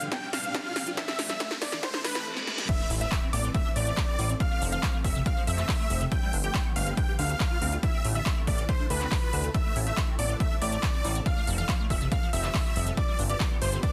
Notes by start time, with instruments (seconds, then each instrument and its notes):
Already playing: riser
0.01 acid bass D3, closed hi-hat
0.12 acid bass D4, supersaw synth G5, grand piano G5, kick, snare, closed hi-hat
0.22 acid bass G4
0.33 acid bass D4, grand piano F5, supersaw synth F5, snare, open hi-hat
0.44 acid bass D4, closed hi-hat
0.55 acid bass D4, kick, snare, closed hi-hat
0.65 acid bass F4
0.76 acid bass C4, snare, open hi-hat
0.87 acid bass F4, closed hi-hat
0.97 acid bass E4, grand piano E5, supersaw synth E5, kick, snare, closed hi-hat
1.08 acid bass C4, snare
1.19 acid bass A3, snare, open hi-hat
1.29 acid bass G3, grand piano E5, supersaw synth E5, snare, closed hi-hat
1.40 acid bass A3, kick, snare, closed hi-hat
1.51 acid bass C4, snare
1.62 acid bass A3, grand piano D5, supersaw synth D5, kick, snare, open hi-hat
1.72 acid bass E3, snare, closed hi-hat
1.83 acid bass A3, grand piano C5, supersaw synth C5, kick, snare, closed hi-hat, reverse cymbal
1.94 acid bass D4, snare
2.04 acid bass D4, grand piano B4, supersaw synth B4, snare, open hi-hat
2.15 acid bass C4, snare, closed hi-hat
2.37 snare
2.47 snare
2.58 snare
2.69 acid bass A3, grand piano E5, supersaw synth E5, kick, closed hi-hat, crash, impact
2.80 acid bass A3
2.90 analog synth bass A1, acid bass E4, open hi-hat
3.01 acid bass A3, grand piano E5, supersaw synth E5, closed hi-hat
3.12 acid bass A3, kick, clap, closed hi-hat
3.22 acid bass C4
3.33 analog synth bass A1, acid bass B3, supersaw synth D5, grand piano D5, open hi-hat
3.44 acid bass E3, closed hi-hat
3.54 acid bass A3, grand piano E5, supersaw synth E5, kick, closed hi-hat
3.65 acid bass D4
3.76 analog synth bass A1, acid bass A3, supersaw synth D5, grand piano D5, open hi-hat
3.87 acid bass A3, closed hi-hat
3.97 acid bass A3, kick, clap, closed hi-hat
4.08 acid bass C4
4.19 analog synth bass A1, acid bass G3, open hi-hat
4.30 acid bass C4, closed hi-hat
4.40 acid bass C4, supersaw synth F5, grand piano F5, kick, closed hi-hat
4.51 acid bass A3
4.62 analog synth bass F1, acid bass F3, open hi-hat
4.72 acid bass E3, supersaw synth F5, grand piano F5, closed hi-hat
4.83 acid bass F3, kick, clap, closed hi-hat
4.94 acid bass A3
5.04 analog synth bass F1, acid bass F3, supersaw synth E5, grand piano E5, kick, open hi-hat
5.15 acid bass C3, closed hi-hat
5.26 acid bass C4, supersaw synth F5, grand piano F5, kick, closed hi-hat
5.37 acid bass F3
5.47 analog synth bass F1, acid bass F3, supersaw synth E5, grand piano E5, open hi-hat
5.58 acid bass E3, clap, closed hi-hat
5.69 acid bass F3, kick, clap, open hi-hat
5.80 acid bass A3
5.90 analog synth bass F1, acid bass F3, open hi-hat
6.01 acid bass C3, closed hi-hat
6.12 acid bass G3, grand piano G5, supersaw synth G5, kick, closed hi-hat
6.22 acid bass G3
6.33 analog synth bass G1, acid bass D4, open hi-hat
6.44 acid bass G4, grand piano G5, supersaw synth G5, closed hi-hat
6.54 acid bass G3, kick, clap, closed hi-hat
6.65 acid bass B3
6.76 analog synth bass G1, acid bass A3, supersaw synth F5, grand piano F5, open hi-hat
6.87 acid bass D3, closed hi-hat
6.97 acid bass D4, supersaw synth G5, grand piano G5, kick, closed hi-hat
7.08 acid bass G4
7.19 analog synth bass D2, acid bass D4, supersaw synth F5, grand piano F5, open hi-hat
7.30 acid bass D4, closed hi-hat
7.40 acid bass D4, kick, clap, closed hi-hat
7.51 acid bass F4
7.62 analog synth bass D2, acid bass C4, open hi-hat
7.72 acid bass F4, closed hi-hat
7.83 acid bass E4, supersaw synth E5, grand piano E5, kick, closed hi-hat
7.94 acid bass C4
8.05 analog synth bass A1, acid bass A3, open hi-hat
8.15 acid bass G3, grand piano E5, supersaw synth E5, closed hi-hat
8.26 acid bass A3, kick, clap, closed hi-hat
8.37 acid bass C4
8.47 analog synth bass A1, acid bass A3, grand piano D5, supersaw synth D5, kick, open hi-hat
8.58 acid bass E3, closed hi-hat
8.69 acid bass A3, grand piano C5, supersaw synth C5, kick, closed hi-hat
8.80 acid bass D4
8.90 analog synth bass D2, acid bass D4, grand piano B4, supersaw synth B4, open hi-hat
9.01 acid bass C4, clap, closed hi-hat
9.12 kick, clap, open hi-hat
9.22 acid bass F4
9.33 analog synth bass D2, acid bass D4, open hi-hat
9.44 acid bass A3, closed hi-hat
9.54 acid bass A3, grand piano E5, supersaw synth E5, kick, closed hi-hat
9.65 acid bass A3
9.76 analog synth bass A1, acid bass E4, open hi-hat
9.87 acid bass A3, supersaw synth E5, grand piano E5, closed hi-hat
9.97 acid bass A3, kick, clap, closed hi-hat
10.08 acid bass C4
10.19 analog synth bass A1, acid bass B3, supersaw synth D5, grand piano D5, open hi-hat
10.29 acid bass E3, closed hi-hat
10.40 acid bass A3, supersaw synth E5, grand piano E5, kick, closed hi-hat
10.51 acid bass D4
10.62 analog synth bass A1, acid bass A3, supersaw synth D5, grand piano D5, open hi-hat
10.72 acid bass A3, closed hi-hat
10.83 acid bass A3, kick, clap, closed hi-hat
10.94 acid bass C4
11.04 analog synth bass A1, acid bass G3, open hi-hat
11.15 acid bass C4, closed hi-hat
11.26 acid bass C4, supersaw synth F5, grand piano F5, kick, closed hi-hat
11.37 acid bass A3
11.47 analog synth bass F1, acid bass F3, open hi-hat
11.58 acid bass E3, supersaw synth F5, grand piano F5, closed hi-hat
11.69 acid bass F3, kick, clap, closed hi-hat
11.80 acid bass A3
11.90 analog synth bass F1, acid bass F3, supersaw synth E5, grand piano E5, kick, open hi-hat
12.01 acid bass C3, closed hi-hat
12.12 acid bass C4, supersaw synth F5, grand piano F5, kick, closed hi-hat
12.22 acid bass F3
12.33 analog synth bass F1, acid bass F3, supersaw synth E5, grand piano E5, open hi-hat
12.44 acid bass E3, clap, closed hi-hat
12.54 acid bass F3, kick, clap, open hi-hat
12.65 acid bass A3
12.76 analog synth bass F1, acid bass F3, open hi-hat
12.87 acid bass C3, closed hi-hat
12.97 acid bass G3, supersaw synth D5, grand piano D5, kick, closed hi-hat
13.08 acid bass G3
13.19 analog synth bass G1, acid bass D4, open hi-hat
13.29 acid bass G4, supersaw synth D5, grand piano D5, closed hi-hat
13.40 acid bass G3, kick, clap, closed hi-hat
13.51 acid bass B3
13.62 analog synth bass G1, acid bass A3, grand piano C5, supersaw synth C5, open hi-hat
13.72 acid bass D3, closed hi-hat
13.83 acid bass D4, grand piano D5, supersaw synth D5, kick, closed hi-hat